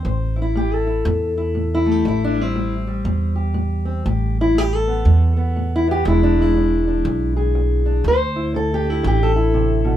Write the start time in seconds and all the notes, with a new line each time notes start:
Already playing: C4
0.05 A1 A2 C5
0.36 E4
0.42 E4
0.55 A2 G4
0.74 A4
0.87 E4
1.05 E2 A2
1.38 E4
1.55 A2
1.75 E4
1.86 A3
1.92 G4
2.05 A1 A2 E4
2.24 D4
2.36 G3
2.41 C4
2.56 A2
2.87 G3
3.05 E2 A2
3.36 G4
3.54 A2
3.85 C4
4.06 A1 A2 G4
4.41 E4
4.55 A2 G4
4.75 A4
4.87 B3
5.05 E2 A2
5.37 B3
5.56 A2
5.76 E4
5.87 B3 G4
6.05 E1 E2 E3 G#3 D4 E4
6.23 D4
6.39 G#3 E4
6.56 E2 D4
6.87 D4
7.05 B1 E2
7.37 G#4
7.55 E2
7.86 D4
8.04 D2 D3
8.08 C5
8.36 E4
8.54 D3 A4
8.74 G4
8.85 D4
8.90 E4
9.03 A1 D3 G4
9.23 A4
9.36 E4
9.54 C3
9.85 B2